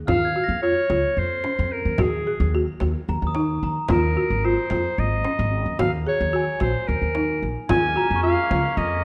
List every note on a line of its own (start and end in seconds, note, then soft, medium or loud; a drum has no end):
0.07 0.33 D#2 medium
0.07 0.27 F4 medium
0.07 0.59 F5 medium
0.07 1.48 F6 medium
0.07 frame drum medium
0.25 1.64 G#6 soft
0.36 0.54 F#4 medium
0.44 1.80 A#6 soft
0.49 0.74 F2 medium
0.62 0.81 F4 medium
0.62 1.20 C#5 medium
0.90 1.02 C#2 medium
0.90 1.27 F4 medium
0.90 frame drum soft
1.17 1.42 F2 medium
1.17 1.74 C5 medium
1.17 frame drum soft
1.44 1.81 C#4 medium
1.44 frame drum soft
1.59 1.83 F2 medium
1.72 2.03 A#4 medium
1.85 1.98 D#2 medium
1.98 2.24 D#2 medium
1.98 2.17 F#4 medium
1.98 2.61 G#4 medium
1.98 frame drum medium
2.27 2.45 G#4 medium
2.40 2.65 D#2 medium
2.55 2.73 F#4 medium
2.80 2.93 D#2 medium
2.80 3.18 F#4 medium
2.80 frame drum soft
3.08 3.21 D#2 medium
3.08 3.62 A#5 soft
3.08 frame drum soft
3.22 3.59 D#2 medium
3.27 4.29 D#6 soft
3.35 3.72 D#4 medium
3.35 frame drum soft
3.63 3.75 D#2 medium
3.63 4.13 A#5 medium
3.88 4.14 D#2 medium
3.88 4.08 F4 medium
3.88 4.46 A#4 medium
3.88 frame drum medium
4.17 4.35 F#4 medium
4.30 4.55 G#1 medium
4.44 4.62 F4 medium
4.44 5.00 C5 medium
4.70 4.83 F2 medium
4.70 5.08 F4 medium
4.70 frame drum soft
4.98 5.23 G#1 medium
4.98 5.79 D#5 medium
4.98 frame drum soft
5.25 5.62 C#4 medium
5.25 frame drum soft
5.39 5.64 G#1 medium
5.66 5.78 D#2 medium
5.79 6.04 D#2 medium
5.79 5.97 F#4 medium
5.79 5.92 F5 medium
5.79 frame drum medium
6.07 6.25 G#4 medium
6.07 6.58 C#5 medium
6.21 6.45 D#2 medium
6.33 6.52 F#4 medium
6.33 7.74 G#5 soft
6.33 frame drum soft
6.60 6.73 A#1 medium
6.60 6.97 F#4 medium
6.60 6.89 C5 medium
6.60 frame drum soft
6.88 7.01 D#2 medium
6.88 7.49 A#4 medium
6.88 frame drum soft
7.02 7.39 D#2 medium
7.15 7.52 D#4 medium
7.15 frame drum soft
7.42 7.55 A#1 medium
7.42 frame drum soft
7.69 7.94 D#2 medium
7.69 9.04 G#3 medium
7.69 9.04 A#3 medium
7.69 9.04 C#4 medium
7.69 7.88 F4 medium
7.69 8.20 G#5 loud
7.69 frame drum medium
7.96 8.14 F#4 medium
7.96 9.04 A#5 medium
8.11 8.35 F2 medium
8.16 9.04 C#6 soft
8.23 8.42 F4 medium
8.23 8.79 F5 medium
8.51 8.63 C#2 medium
8.51 8.87 F4 medium
8.51 frame drum soft
8.77 9.02 F2 medium
8.77 9.04 D#5 medium
8.77 frame drum soft